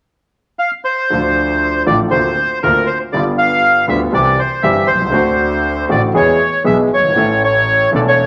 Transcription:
0.59 0.71 F5 medium
0.84 1.83 C5 medium
1.10 1.84 D2 medium
1.10 1.84 D3 medium
1.10 1.84 F3 soft
1.10 1.84 A3 soft
1.10 1.85 F4 medium
1.86 2.08 A1 medium
1.86 2.09 A1 medium
1.86 2.08 A2 medium
1.86 2.08 D3 medium
1.86 2.08 F3 soft
1.86 2.09 A3 soft
1.86 2.08 F4 medium
1.86 1.98 D5 medium
2.11 2.34 D2 medium
2.11 2.33 D3 medium
2.11 2.34 A#3 soft
2.11 2.34 C4 soft
2.11 2.33 F4 medium
2.11 2.59 C5 medium
2.63 2.85 D2 medium
2.63 2.85 D3 medium
2.63 2.85 A#3 soft
2.63 2.85 C4 soft
2.63 2.85 F4 medium
2.63 2.89 A#4 medium
2.87 2.98 C5 medium
3.12 3.86 G1 medium
3.12 3.86 G2 medium
3.12 3.85 D3 soft
3.12 3.86 G3 soft
3.12 3.86 B3 soft
3.12 3.24 D5 medium
3.17 3.87 F4 medium
3.38 3.86 F5 medium
3.88 4.10 D2 medium
3.88 4.10 D3 medium
3.88 4.10 G3 soft
3.88 4.10 B3 soft
3.88 4.10 F4 medium
3.88 4.01 E5 medium
4.12 4.35 C2 medium
4.12 4.36 C2 medium
4.12 4.35 C3 medium
4.12 4.35 E3 medium
4.12 4.35 G3 soft
4.12 4.35 C4 soft
4.12 4.35 G4 medium
4.12 4.40 D5 medium
4.39 4.63 C5 medium
4.63 4.85 G1 medium
4.63 4.86 G1 medium
4.63 4.86 G2 medium
4.63 4.86 E3 medium
4.63 4.86 G3 soft
4.63 4.86 C4 soft
4.63 4.86 G4 medium
4.63 4.87 E5 medium
4.87 5.14 C2 soft
4.87 5.85 C5 medium
4.95 5.02 B1 soft
5.01 5.08 C2 soft
5.06 5.14 C#2 soft
5.12 5.85 D2 medium
5.12 5.87 D2 medium
5.12 5.86 D3 medium
5.12 5.85 A3 soft
5.12 5.86 C4 soft
5.12 5.86 F#4 medium
5.89 6.11 A1 medium
5.89 6.12 A1 medium
5.89 6.11 A2 medium
5.89 6.11 D3 medium
5.89 6.11 A3 soft
5.89 6.11 C4 soft
5.89 6.11 F#4 medium
5.89 6.02 D5 medium
6.14 6.36 E2 medium
6.14 6.37 E2 medium
6.14 6.36 E3 medium
6.14 6.36 G#3 soft
6.14 6.36 B3 soft
6.14 6.37 G#4 medium
6.14 6.63 C#5 medium
6.64 6.87 B1 medium
6.64 6.88 B1 medium
6.64 6.87 B2 medium
6.64 6.87 E3 medium
6.64 6.87 G#3 soft
6.64 6.87 B3 soft
6.64 6.87 G#4 medium
6.64 6.77 E5 medium
6.92 7.16 G1 soft
6.92 7.42 C#5 medium
6.98 7.04 F#1 soft
7.04 7.10 G1 soft
7.10 7.16 G#1 medium
7.14 7.89 A1 medium
7.14 7.89 A2 medium
7.14 7.88 E3 soft
7.14 7.89 A3 soft
7.14 7.89 C#4 soft
7.14 7.90 A4 medium
7.44 7.90 C#5 medium
7.91 8.27 E1 medium
7.91 8.27 E2 medium
7.91 8.27 E3 medium
7.91 8.27 A3 soft
7.91 8.27 C#4 soft
7.96 8.27 A4 medium
7.96 8.01 D5 medium
8.08 8.27 C#5 medium

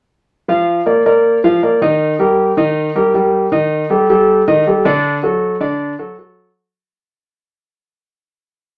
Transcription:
0.48 0.80 F3 medium
0.48 0.80 F4 medium
0.48 0.80 F5 medium
0.86 1.02 A#3 medium
0.86 1.02 A#4 medium
0.86 1.02 D5 medium
1.06 1.37 A#3 medium
1.06 1.37 A#4 medium
1.06 1.37 D5 medium
1.44 1.59 F3 medium
1.44 1.59 F4 medium
1.44 1.59 F5 medium
1.63 1.78 A#3 medium
1.63 1.78 A#4 medium
1.63 1.79 D5 medium
1.81 2.13 D#3 medium
1.81 2.13 D#4 medium
1.81 2.13 D#5 medium
2.19 2.50 G3 medium
2.19 2.51 G4 medium
2.19 2.51 A#4 medium
2.57 2.88 D#3 medium
2.57 2.89 D#4 medium
2.57 2.89 D#5 medium
2.95 3.11 G3 medium
2.95 3.11 G4 medium
2.95 3.11 A#4 medium
3.14 3.45 G3 medium
3.14 3.45 G4 medium
3.14 3.46 A#4 medium
3.52 3.83 D#3 medium
3.52 3.83 D#4 medium
3.52 3.83 D#5 medium
3.90 4.06 G3 medium
3.90 4.06 G4 medium
3.90 4.06 A4 medium
4.09 4.41 G3 medium
4.09 4.41 G4 medium
4.09 4.41 A4 medium
4.47 4.63 D#3 medium
4.47 4.63 D#4 medium
4.47 4.63 D#5 medium
4.67 4.82 G3 medium
4.67 4.82 G4 medium
4.67 4.82 A4 medium
4.85 5.16 D3 medium
4.85 5.17 D4 medium
4.85 5.17 D5 medium
5.23 5.54 F#3 medium
5.23 5.54 F#4 medium
5.23 5.55 A4 medium
5.60 5.92 D3 medium
5.60 5.92 D4 medium
5.60 5.92 D5 medium
5.99 6.15 F#3 medium
5.99 6.15 F#4 medium
5.99 6.15 A4 medium
6.18 6.50 F#3 medium
6.18 6.50 F#4 medium

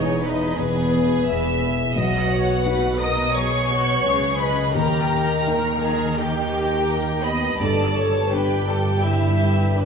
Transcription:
0.00 0.50 E1 soft
0.00 0.50 E2 soft
0.00 2.00 E2 soft
0.00 0.92 B3 soft
0.00 1.93 B3 soft
0.00 0.22 D#4 soft
0.00 1.94 E4 soft
0.00 1.27 G#4 soft
0.00 1.94 G#4 soft
0.00 0.24 C#5 medium
0.00 0.22 D#5 medium
0.23 0.58 D#4 medium
0.23 2.00 E4 soft
0.23 0.58 B4 soft
0.23 0.58 D#5 medium
0.57 1.20 E1 medium
0.57 1.19 E2 medium
0.57 1.96 B2 soft
0.57 1.27 B3 soft
0.57 1.28 G#4 medium
0.57 1.27 B4 medium
0.93 2.31 B3 soft
1.27 1.89 E1 medium
1.27 1.89 E2 soft
1.27 1.62 B3 soft
1.27 2.00 G#4 soft
1.27 1.62 B4 medium
1.27 1.97 E5 medium
1.63 2.00 E5 soft
1.96 2.63 B1 soft
1.96 4.02 B1 medium
1.96 4.01 B2 medium
1.96 4.79 B2 soft
1.96 2.96 F#4 medium
1.96 2.31 D#5 medium
1.96 2.96 F#5 medium
2.32 3.70 B3 soft
2.32 2.67 C#5 medium
2.66 4.72 B3 soft
2.66 4.72 D#4 soft
2.66 4.05 F#4 soft
2.66 4.72 F#4 soft
2.66 3.00 B4 medium
3.00 3.36 A#4 soft
3.00 3.35 D#5 medium
3.00 4.40 D#5 soft
3.00 3.35 D#6 medium
3.35 4.79 F#3 soft
3.35 3.71 G#4 soft
3.35 4.40 C#5 medium
3.35 4.40 C#6 medium
3.71 4.79 B3 soft
3.71 4.06 F#4 soft
4.05 4.74 C#2 soft
4.05 4.74 C#3 soft
4.05 4.79 F#4 soft
4.05 4.76 G#4 soft
4.40 4.76 B4 medium
4.40 7.64 D#5 soft
4.40 4.75 B5 medium
4.75 5.44 D#2 soft
4.75 7.61 D#2 medium
4.75 7.61 D#3 soft
4.75 7.64 D#3 soft
4.75 5.45 G4 medium
4.75 5.80 A#4 medium
4.75 5.80 A#5 medium
5.12 6.52 D#4 soft
5.47 7.57 A#3 soft
5.47 7.57 D#4 soft
5.47 5.83 A#4 medium
5.47 7.57 G5 soft
5.82 6.18 G#4 soft
5.82 6.17 A#4 medium
5.82 7.24 G5 soft
5.82 6.17 A#5 medium
6.17 7.64 A#3 soft
6.17 6.87 G4 soft
6.17 7.25 G4 medium
6.17 7.25 G5 medium
6.54 7.64 D#4 soft
6.88 7.64 G4 soft
6.88 7.25 A#4 soft
7.24 7.60 B3 medium
7.24 7.60 D#5 medium
7.24 9.85 G5 soft
7.24 7.60 B5 medium
7.60 9.85 G1 medium
7.60 9.85 G2 soft
7.60 8.30 G2 soft
7.60 9.85 G2 soft
7.60 8.32 A4 soft
7.60 7.95 D5 soft
7.60 8.32 A5 medium
7.96 9.38 B3 soft
7.96 8.32 C#5 medium
8.31 9.85 B3 soft
8.31 9.85 D4 soft
8.31 9.03 G4 medium
8.31 9.76 G4 soft
8.31 9.85 G4 soft
8.31 8.68 B4 medium
8.31 9.03 G5 medium
8.67 9.03 A4 soft
8.67 9.85 D5 soft
9.03 9.85 D3 soft
9.03 9.77 E4 medium
9.03 9.77 G4 soft
9.03 9.77 E5 medium
9.39 9.85 B3 soft
9.77 9.85 D4 soft
9.77 9.85 G4 soft
9.77 9.85 B4 soft
9.77 9.85 D5 medium

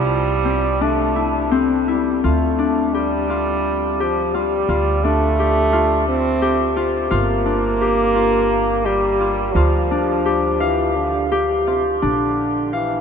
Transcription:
0.00 2.20 C2 medium
0.00 0.85 G3 medium
0.00 0.44 C4 medium
0.00 0.81 D4 medium
0.00 1.16 E4 medium
0.45 1.51 C4 medium
0.81 1.62 A3 medium
0.81 2.58 D4 medium
1.16 1.88 E4 medium
1.51 4.51 C4 medium
1.88 2.22 G3 medium
1.88 2.30 E4 medium
2.24 4.66 D2 medium
2.24 2.96 A3 medium
2.24 3.29 F4 medium
2.59 5.04 D4 medium
2.94 4.03 G3 medium
2.94 4.00 G4 medium
3.30 4.34 F4 medium
4.00 4.37 F3 medium
4.00 5.39 G4 medium
4.34 5.06 G3 medium
4.34 4.69 F4 medium
4.69 7.08 D2 medium
4.69 5.72 F4 medium
5.04 6.07 A3 medium
5.04 7.45 D4 medium
5.39 6.41 G4 medium
5.73 6.76 F4 medium
6.08 6.82 C4 medium
6.42 7.81 G4 medium
6.76 7.10 F4 medium
7.11 9.51 G1 medium
7.11 8.88 A#3 loud
7.11 8.15 F4 medium
7.46 9.91 D4 medium
7.81 8.85 G4 medium
8.15 9.20 F4 medium
8.86 9.55 G3 medium
8.86 10.25 G4 medium
9.20 9.55 F4 medium
9.53 12.00 D2 medium
9.53 10.61 F3 medium
9.53 11.67 F4 medium
9.91 12.02 D4 medium
10.26 11.31 G4 medium
10.60 10.97 E3 medium
10.60 12.27 F5 medium
10.96 11.40 D3 medium
11.32 13.01 G4 medium
11.67 11.83 C3 medium
11.67 13.01 F4 medium
12.02 13.01 A#1 medium
12.02 12.75 D3 medium
12.02 13.01 D4 medium
12.73 13.01 E3 medium
12.73 13.01 F5 medium

